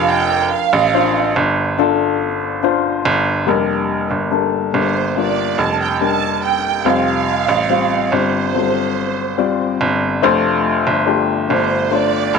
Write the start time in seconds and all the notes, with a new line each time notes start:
Already playing: F1 F3 D4 F4 A#4
0.09 G5
0.52 F5
0.73 A1
0.94 D4 F4 C5
1.36 G1
1.79 D4 F4 A4
2.63 D4 F4 C5
3.05 G1
3.46 F1 G3 A#3 D4 A#4
4.11 G1
4.31 G3 A#3 D4 A4
4.73 G1 G3 A#3 D4 A#4
4.77 C5
5.16 G3 A#3 D4 F4 D5
5.58 F1 A5
5.81 G5
6.01 G3 A#3 D4 A#4 A5
6.45 G5
6.85 F1 C3 G3 C4 F4 C5 F5
7.48 A1
7.69 G3 C4 F4 C5
8.12 G1 G3 C4 F4 C5
8.54 F#3 C4 F4 A4
8.61 G3
9.38 G3 C4 F4 D5
9.81 G1
10.22 F1 F3 A3 D4 F4 C5
10.87 G1
11.06 A3 D4 F4 G4
11.49 G1 A3 D4 F4 C5
11.91 A3 D4 F4 C5 D5
12.34 F1